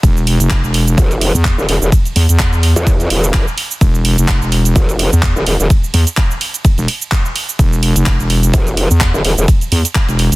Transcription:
0.03 0.38 E1 loud
0.03 kick loud
0.03 closed hi-hat medium
0.03 ride medium
0.03 shaker medium
0.17 shaker soft
0.27 open hi-hat loud
0.27 ride medium
0.40 0.62 F1 loud
0.40 closed hi-hat medium
0.40 shaker medium
0.50 kick loud
0.50 clap loud
0.50 closed hi-hat medium
0.50 ride medium
0.50 shaker medium
0.64 0.96 E1 loud
0.64 shaker soft
0.74 open hi-hat loud
0.74 ride medium
0.87 closed hi-hat medium
0.87 shaker medium
0.98 1.33 F1 loud
0.98 kick loud
0.98 closed hi-hat medium
0.98 ride medium
0.98 shaker medium
1.11 closed hi-hat soft
1.11 shaker soft
1.21 open hi-hat loud
1.21 ride medium
1.35 1.56 E2 medium
1.35 shaker medium
1.45 kick loud
1.45 clap loud
1.45 closed hi-hat medium
1.45 ride medium
1.45 shaker medium
1.58 1.67 E1 medium
1.58 shaker soft
1.69 1.80 E1 loud
1.69 open hi-hat loud
1.69 ride medium
1.82 1.91 E1 loud
1.82 shaker medium
1.92 kick loud
1.92 closed hi-hat medium
1.92 ride medium
1.92 shaker medium
2.05 closed hi-hat soft
2.05 shaker soft
2.16 2.27 E2 loud
2.16 open hi-hat loud
2.16 ride medium
2.29 2.74 E2 loud
2.29 closed hi-hat medium
2.29 shaker medium
2.39 kick loud
2.39 clap loud
2.39 closed hi-hat medium
2.39 ride medium
2.39 shaker medium
2.53 closed hi-hat soft
2.53 shaker soft
2.63 open hi-hat loud
2.63 ride medium
2.76 3.09 E2 loud
2.76 closed hi-hat medium
2.76 shaker medium
2.87 kick loud
2.87 closed hi-hat medium
2.87 ride medium
2.87 shaker medium
3.00 closed hi-hat soft
3.00 shaker soft
3.10 3.45 E1 loud
3.10 open hi-hat loud
3.10 ride medium
3.24 shaker medium
3.34 kick loud
3.34 clap loud
3.34 open hi-hat medium
3.34 ride medium
3.34 shaker medium
3.48 shaker soft
3.58 open hi-hat loud
3.58 ride medium
3.71 shaker medium
3.81 4.16 E1 loud
3.81 kick loud
3.81 closed hi-hat medium
3.81 ride medium
3.81 shaker medium
3.95 shaker soft
4.05 open hi-hat loud
4.05 ride medium
4.18 4.40 F1 loud
4.18 closed hi-hat medium
4.18 shaker medium
4.28 kick loud
4.28 clap loud
4.28 closed hi-hat medium
4.28 ride medium
4.28 shaker medium
4.42 4.74 E1 loud
4.42 shaker soft
4.52 open hi-hat loud
4.52 ride medium
4.65 closed hi-hat medium
4.65 shaker medium
4.76 5.10 F1 loud
4.76 kick loud
4.76 closed hi-hat medium
4.76 ride medium
4.76 shaker medium
4.89 closed hi-hat soft
4.89 shaker soft
4.99 open hi-hat loud
4.99 ride medium
5.13 5.34 E2 loud
5.13 shaker medium
5.23 kick loud
5.23 clap loud
5.23 closed hi-hat medium
5.23 ride medium
5.23 shaker medium
5.36 5.45 E1 loud
5.36 shaker soft
5.46 5.58 E1 loud
5.46 open hi-hat loud
5.46 ride medium
5.60 5.69 E1 loud
5.60 shaker medium
5.70 kick loud
5.70 closed hi-hat medium
5.70 ride medium
5.70 shaker medium
5.84 shaker soft
5.94 6.05 E2 loud
5.94 open hi-hat loud
5.94 ride medium
6.07 closed hi-hat medium
6.07 shaker medium
6.17 kick loud
6.17 clap loud
6.17 closed hi-hat medium
6.17 ride medium
6.17 shaker medium
6.31 shaker soft
6.41 open hi-hat loud
6.41 ride medium
6.54 closed hi-hat medium
6.54 shaker medium
6.65 kick loud
6.65 closed hi-hat medium
6.65 ride medium
6.65 shaker medium
6.78 6.87 E1 medium
6.78 closed hi-hat soft
6.78 shaker soft
6.88 open hi-hat loud
6.88 ride medium
7.02 shaker medium
7.12 kick loud
7.12 clap loud
7.12 closed hi-hat medium
7.12 ride medium
7.12 shaker medium
7.26 shaker soft
7.36 open hi-hat loud
7.36 ride medium
7.49 shaker medium
7.59 7.94 E1 loud
7.59 kick loud
7.59 closed hi-hat medium
7.59 ride medium
7.59 shaker medium
7.73 shaker soft
7.83 open hi-hat loud
7.83 ride medium
7.96 8.18 F1 loud
7.96 closed hi-hat medium
7.96 shaker medium
8.06 kick loud
8.06 clap loud
8.06 closed hi-hat medium
8.06 ride medium
8.06 shaker medium
8.20 8.52 E1 loud
8.20 shaker soft
8.30 open hi-hat loud
8.30 ride medium
8.43 closed hi-hat medium
8.43 shaker medium
8.54 8.88 F1 loud
8.54 kick loud
8.54 closed hi-hat medium
8.54 ride medium
8.54 shaker medium
8.67 closed hi-hat soft
8.67 shaker soft
8.77 open hi-hat loud
8.77 ride medium
8.90 9.12 E2 loud
8.90 shaker medium
9.01 kick loud
9.01 clap loud
9.01 closed hi-hat medium
9.01 ride medium
9.01 shaker medium
9.14 9.23 E1 loud
9.14 shaker soft
9.25 9.36 E1 loud
9.25 open hi-hat loud
9.25 ride medium
9.38 9.46 E1 loud
9.38 shaker medium
9.48 kick loud
9.48 closed hi-hat medium
9.48 ride medium
9.48 shaker medium
9.61 closed hi-hat soft
9.61 shaker soft
9.72 9.83 E2 loud
9.72 open hi-hat loud
9.72 ride medium
9.85 closed hi-hat medium
9.85 shaker medium
9.95 kick loud
9.95 clap loud
9.95 closed hi-hat medium
9.95 ride medium
9.95 shaker medium
10.09 10.30 E1 loud
10.09 closed hi-hat soft
10.09 shaker soft
10.19 open hi-hat loud
10.19 ride medium
10.32 10.36 E1 loud
10.32 closed hi-hat medium

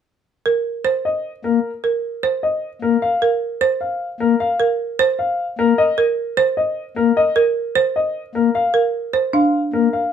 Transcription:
0.46 0.71 A#4 medium
0.85 1.10 C5 medium
1.05 1.30 D#5 medium
1.44 1.59 A#3 medium
1.44 1.70 A#4 medium
1.84 2.09 A#4 soft
2.23 2.49 C5 medium
2.43 2.69 D#5 medium
2.82 2.97 A#3 medium
2.82 3.08 A#4 medium
3.02 3.28 F5 medium
3.22 3.48 A#4 medium
3.61 3.87 C5 medium
3.81 4.07 F5 medium
4.20 4.35 A#3 medium
4.20 4.46 A#4 medium
4.40 4.66 F5 medium
4.60 4.85 A#4 medium
4.99 5.25 C5 medium
5.19 5.45 F5 medium
5.58 5.73 A#3 medium
5.58 5.84 A#4 medium
5.78 6.04 D#5 medium
5.98 6.24 A#4 medium
6.37 6.63 C5 medium
6.57 6.83 D#5 medium
6.96 7.12 A#3 medium
6.96 7.22 A#4 medium
7.17 7.42 D#5 medium
7.36 7.62 A#4 medium
7.75 8.01 C5 medium
7.96 8.21 D#5 medium
8.35 8.50 A#3 medium
8.35 8.61 A#4 medium
8.55 8.80 F5 medium
8.74 9.00 A#4 medium
9.13 9.39 C5 medium
9.33 9.59 D4 medium
9.33 9.59 F5 medium
9.73 9.88 A#3 medium
9.73 9.99 A#4 medium
9.93 10.13 F5 medium

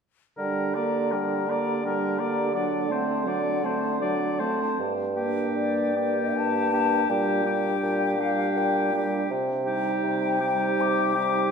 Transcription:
0.37 4.41 D3 soft
0.37 0.77 G3 soft
0.37 0.77 D4 soft
0.37 0.76 A#4 soft
0.37 0.78 G5 soft
0.74 1.13 A#3 soft
0.74 1.14 G4 soft
0.74 1.13 D5 soft
0.74 1.15 A#5 soft
1.11 1.50 G3 soft
1.11 1.50 D4 soft
1.11 1.52 A#4 soft
1.11 1.50 G5 soft
1.48 1.84 A#3 soft
1.48 1.84 G4 soft
1.48 1.85 D5 soft
1.48 1.83 A#5 soft
1.84 2.21 G3 soft
1.84 2.22 D4 soft
1.84 2.21 A#4 soft
1.84 2.19 G5 soft
2.18 2.53 A#3 soft
2.18 2.55 G4 soft
2.18 2.54 D5 soft
2.18 2.51 A#5 soft
2.52 2.91 F#3 soft
2.52 2.93 D5 soft
2.52 2.91 F#5 soft
2.56 2.93 D4 soft
2.89 3.28 A3 soft
2.89 3.31 C4 soft
2.89 3.29 C5 soft
2.89 3.28 A5 soft
3.26 3.65 F#3 soft
3.26 3.67 D4 soft
3.26 3.66 D5 soft
3.26 3.66 F#5 soft
3.64 4.00 A3 soft
3.64 4.01 C4 soft
3.64 4.01 C5 soft
3.64 4.00 A5 soft
4.01 4.41 F#3 soft
4.01 4.43 D4 soft
4.01 4.40 D5 soft
4.01 4.42 F#5 soft
4.39 4.79 A3 soft
4.39 4.80 C4 soft
4.39 4.78 C5 soft
4.39 4.79 A5 soft
4.79 5.47 G2 soft
5.16 5.93 A#3 soft
5.16 5.94 D4 soft
5.16 5.94 G4 soft
5.55 6.26 G2 soft
5.55 6.39 D5 medium
5.95 6.71 A#3 soft
5.95 6.72 D4 soft
5.95 6.72 G4 soft
6.35 7.01 G2 soft
6.35 7.11 A5 medium
6.72 7.08 A#3 soft
6.72 7.09 D4 soft
6.72 7.09 G4 soft
7.09 7.74 A#2 soft
7.09 7.44 G3 soft
7.09 7.45 D4 soft
7.09 7.46 G4 soft
7.09 8.21 G5 medium
7.45 8.17 G3 soft
7.45 8.18 D4 soft
7.45 8.18 G4 soft
7.83 8.48 A#2 soft
8.18 8.91 G3 soft
8.18 8.92 D4 soft
8.18 8.93 G4 soft
8.18 8.60 F5 medium
8.57 9.22 A#2 soft
8.57 9.31 G5 medium
8.93 9.29 G3 soft
8.93 9.29 D4 soft
8.93 9.30 G4 soft
9.30 9.95 C3 soft
9.66 10.40 G3 soft
9.66 10.40 D#4 soft
9.66 10.40 G4 soft
10.03 10.71 C3 soft
10.03 10.82 G5 soft
10.41 11.15 G3 soft
10.41 11.14 D#4 soft
10.41 11.14 G4 soft
10.79 11.43 C3 soft
10.79 11.51 D6 medium
11.15 11.51 G3 soft
11.15 11.51 D#4 soft
11.15 11.51 G4 soft

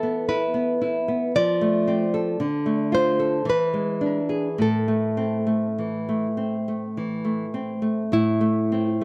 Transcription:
0.00 1.31 E3 soft
0.00 0.45 B3 soft
0.00 0.19 E4 soft
0.00 0.26 A4 medium
0.29 0.71 E4 soft
0.29 1.31 B4 medium
0.54 0.97 B3 soft
0.81 1.24 E4 soft
1.08 1.35 B3 soft
1.36 2.38 F3 soft
1.36 2.90 D5 medium
1.61 2.04 A3 soft
1.87 2.30 C4 soft
2.14 2.40 A4 soft
2.40 3.44 D3 soft
2.66 3.09 A3 soft
2.92 3.36 F4 soft
2.92 3.44 C5 medium
3.19 3.47 A4 soft
3.45 4.56 E3 soft
3.50 4.57 B4 medium
3.74 4.19 G#3 soft
4.01 4.48 D4 soft
4.29 4.59 G#4 soft
4.58 8.08 A2 soft
4.58 7.52 A4 soft
4.88 5.36 A3 soft
5.17 5.65 C4 soft
5.47 5.95 A3 soft
5.78 6.26 E3 soft
6.09 6.56 A3 soft
6.37 6.85 C4 soft
6.68 7.15 A3 soft
6.97 7.44 E3 soft
7.25 7.72 A3 soft
7.54 8.01 C4 soft
7.82 8.12 A3 soft
8.12 9.04 A2 soft
8.12 9.04 E4 medium
8.41 8.89 A3 soft
8.72 9.04 C4 soft

